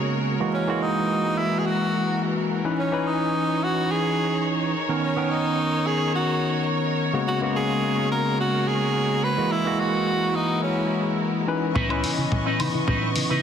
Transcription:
0.00 0.37 C#3 medium
0.00 0.37 G#3 medium
0.00 0.52 G#3 medium
0.00 0.37 A#3 medium
0.00 0.37 B3 medium
0.00 0.38 F#4 medium
0.00 0.52 F#4 medium
0.00 2.74 A#4 medium
0.00 0.52 C#5 medium
0.40 0.65 E3 medium
0.40 0.65 G#3 medium
0.40 0.65 A#3 medium
0.40 0.65 F#4 medium
0.54 4.71 E3 medium
0.54 2.76 G#3 medium
0.54 0.84 C#4 medium
0.54 2.76 F#4 medium
0.67 2.61 E3 medium
0.67 2.61 G#3 medium
0.67 2.62 A#3 medium
0.67 2.62 F#4 medium
0.82 1.40 D#4 medium
1.38 1.61 E4 medium
1.59 1.68 G#4 medium
1.66 2.22 F#4 medium
2.64 2.89 E3 medium
2.64 2.89 C#4 medium
2.64 2.90 D#4 medium
2.64 2.90 B4 medium
2.78 3.09 C#4 medium
2.78 7.23 D#4 medium
2.78 9.47 C#5 medium
2.92 4.72 E3 medium
2.92 4.73 C#4 medium
2.92 4.73 D#4 medium
2.92 4.73 B4 medium
3.07 3.65 D#4 medium
3.64 3.93 F#4 medium
3.91 4.47 G#4 medium
4.75 11.72 A#4 medium
4.89 5.14 D#3 medium
4.89 5.14 B3 medium
4.89 5.14 C#4 medium
4.89 5.14 A#4 medium
5.03 5.32 C#4 medium
5.16 7.09 D#3 medium
5.16 7.10 B3 medium
5.16 7.10 C#4 medium
5.16 7.11 A#4 medium
5.30 5.88 D#4 medium
5.87 6.14 G#4 loud
6.15 6.67 F#4 medium
7.13 7.38 C#3 medium
7.13 7.38 G#3 medium
7.13 7.38 A#3 medium
7.13 7.38 B3 medium
7.13 7.38 F#4 medium
7.27 11.71 G#3 medium
7.27 11.72 F#4 medium
7.27 7.41 F#4 medium
7.41 9.34 C#3 medium
7.41 9.34 G#3 medium
7.41 9.35 A#3 medium
7.41 9.35 B3 medium
7.41 9.35 F#4 medium
7.56 8.08 G#4 medium
8.12 8.38 A#4 medium
8.40 8.69 F#4 medium
8.68 9.25 G#4 loud
9.24 9.53 B4 medium
9.37 9.62 E3 medium
9.37 9.62 G#3 medium
9.37 9.63 A#3 medium
9.37 9.63 F#4 medium
9.51 11.73 E4 medium
9.51 9.81 E4 loud
9.65 11.44 E3 medium
9.65 11.45 G#3 medium
9.65 11.45 A#3 medium
9.65 11.45 F#4 medium
9.80 10.37 F#4 loud
10.35 10.62 D#4 medium
10.63 11.15 C#4 medium
11.47 11.87 E3 medium
11.47 11.87 C#4 medium
11.47 11.87 D#4 medium
11.47 11.87 B4 medium
11.74 12.05 C#2 loud
11.74 11.80 B3 medium
11.74 13.42 B3 medium
11.74 12.10 D#4 loud
11.74 12.11 E4 loud
11.74 12.11 B4 loud
11.74 13.42 D#5 medium
11.74 13.42 C#6 medium
11.74 mid tom soft
11.89 13.42 E3 medium
11.89 13.42 C#4 medium
11.89 12.00 C#4 medium
11.89 13.42 B4 medium
11.89 13.42 D#5 medium
11.89 high woodblock medium
12.04 12.13 C#3 medium
12.04 12.08 D#4 medium
12.04 open hi-hat loud
12.18 12.27 C#3 loud
12.18 12.25 E4 medium
12.32 12.41 C#2 medium
12.32 12.36 B3 medium
12.32 mid tom soft
12.45 12.53 C#4 loud
12.45 12.66 D#4 medium
12.45 12.67 E4 medium
12.45 12.67 B4 medium
12.60 12.69 C#3 medium
12.60 12.64 D#4 medium
12.60 open hi-hat loud
12.60 high woodblock medium
12.74 12.83 C#3 medium
12.74 12.81 E4 medium
12.87 12.97 C#2 loud
12.87 12.92 B3 medium
12.87 13.09 D#4 medium
12.87 13.09 E4 medium
12.87 13.09 B4 medium
12.87 mid tom soft
13.02 13.12 C#4 medium
13.16 13.25 C#3 medium
13.16 13.20 D#4 medium
13.16 open hi-hat medium
13.29 13.42 C#3 medium
13.29 13.42 D#4 medium
13.29 13.42 E4 medium
13.29 13.37 E4 medium
13.29 13.42 B4 loud

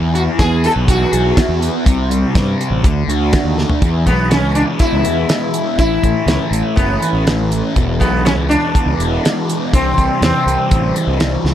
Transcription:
0.00 0.27 E2 loud
0.00 1.12 E2 medium
0.15 1.37 E3 medium
0.15 0.21 F#4 medium
0.15 closed hi-hat medium
0.39 0.67 E2 medium
0.39 0.87 B3 medium
0.39 0.64 G#4 medium
0.39 kick loud
0.39 snare loud
0.39 closed hi-hat medium
0.64 1.11 G#4 medium
0.64 0.72 A4 loud
0.64 closed hi-hat medium
0.76 1.04 B1 medium
0.88 1.59 B3 medium
0.88 1.58 F#4 medium
0.88 kick loud
0.88 closed hi-hat loud
1.12 1.31 B1 medium
1.12 1.86 G#4 medium
1.12 closed hi-hat medium
1.37 1.86 E4 medium
1.37 kick loud
1.37 snare loud
1.37 closed hi-hat loud
1.49 1.68 E2 medium
1.60 1.85 B3 medium
1.60 closed hi-hat medium
1.85 2.23 C2 loud
1.85 2.83 C3 medium
1.85 kick loud
1.85 closed hi-hat medium
2.10 2.84 G3 medium
2.10 closed hi-hat medium
2.35 2.54 G2 medium
2.35 2.84 C4 medium
2.35 kick loud
2.35 snare loud
2.35 closed hi-hat medium
2.60 2.84 G4 medium
2.60 closed hi-hat medium
2.70 2.80 A1 medium
2.84 3.03 D2 loud
2.84 3.83 D3 medium
2.84 kick loud
2.84 closed hi-hat loud
3.07 3.36 D2 medium
3.07 3.82 F#4 medium
3.07 closed hi-hat medium
3.33 3.82 D4 medium
3.33 kick loud
3.33 snare loud
3.33 closed hi-hat loud
3.44 3.63 D#2 medium
3.58 3.82 A3 medium
3.58 snare medium
3.70 floor tom medium
3.82 4.08 E2 medium
3.82 5.05 E2 medium
3.82 kick loud
3.82 closed hi-hat medium
4.06 4.44 B1 medium
4.06 4.55 G#3 medium
4.06 4.30 B3 medium
4.06 kick medium
4.06 closed hi-hat medium
4.31 5.05 E3 medium
4.31 4.55 C#4 medium
4.31 snare loud
4.31 closed hi-hat medium
4.44 4.62 C#2 medium
4.55 5.28 G#3 medium
4.55 4.62 D4 medium
4.55 closed hi-hat medium
4.79 5.78 B3 medium
4.79 5.78 E4 loud
4.79 kick loud
4.79 closed hi-hat medium
4.92 5.02 C#2 medium
5.05 5.24 E2 medium
5.05 5.53 E3 medium
5.05 closed hi-hat medium
5.29 5.79 G#3 medium
5.29 snare loud
5.29 closed hi-hat medium
5.54 6.28 E3 medium
5.54 closed hi-hat medium
5.78 5.97 A1 loud
5.78 7.02 A2 medium
5.78 6.74 E4 loud
5.78 kick medium
5.78 closed hi-hat medium
6.03 6.13 A1 medium
6.03 6.51 A3 medium
6.03 kick medium
6.03 closed hi-hat medium
6.26 6.36 C#2 medium
6.26 7.01 E3 medium
6.26 snare medium
6.26 closed hi-hat medium
6.51 6.61 A1 loud
6.51 7.25 A3 medium
6.51 closed hi-hat medium
6.76 6.96 F#1 loud
6.76 7.22 B3 medium
6.76 7.76 C#4 medium
6.76 kick loud
6.76 closed hi-hat medium
7.02 7.51 E3 medium
7.02 closed hi-hat medium
7.13 7.61 A1 medium
7.26 7.76 A3 medium
7.26 snare loud
7.26 closed hi-hat medium
7.51 8.25 E3 medium
7.51 closed hi-hat medium
7.75 8.01 E1 medium
7.75 8.99 E2 medium
7.75 kick medium
7.75 closed hi-hat medium
8.00 8.37 B1 medium
8.00 8.48 G#3 medium
8.00 8.25 B3 medium
8.00 kick medium
8.00 closed hi-hat medium
8.25 8.99 E3 medium
8.25 8.32 C#4 medium
8.25 snare loud
8.25 closed hi-hat medium
8.37 8.56 C#2 medium
8.49 9.23 G#3 medium
8.49 9.69 D4 loud
8.49 closed hi-hat medium
8.75 9.73 B3 medium
8.75 kick loud
8.75 closed hi-hat medium
8.86 8.96 C#2 medium
8.98 9.18 E1 medium
8.98 9.48 E3 medium
8.98 closed hi-hat medium
9.24 9.73 G#3 medium
9.24 snare loud
9.24 closed hi-hat medium
9.48 10.22 E3 medium
9.48 closed hi-hat medium
9.73 9.92 C2 medium
9.73 10.96 C3 medium
9.73 10.19 C4 medium
9.73 kick loud
9.73 closed hi-hat loud
9.97 10.07 C2 medium
9.97 10.45 G3 medium
9.97 kick medium
9.97 closed hi-hat medium
10.21 10.31 E2 medium
10.21 10.96 E3 medium
10.21 10.93 C4 medium
10.21 snare loud
10.21 closed hi-hat medium
10.46 10.56 C2 medium
10.46 11.21 G3 medium
10.46 closed hi-hat medium
10.71 10.90 A1 medium
10.71 11.46 C4 medium
10.71 kick loud
10.71 closed hi-hat medium
10.96 11.54 E3 medium
10.96 closed hi-hat medium
11.07 11.36 C2 medium
11.20 11.46 G3 medium
11.20 snare loud
11.20 closed hi-hat medium
11.44 11.54 C#2 medium
11.44 11.54 C#3 medium
11.44 snare medium

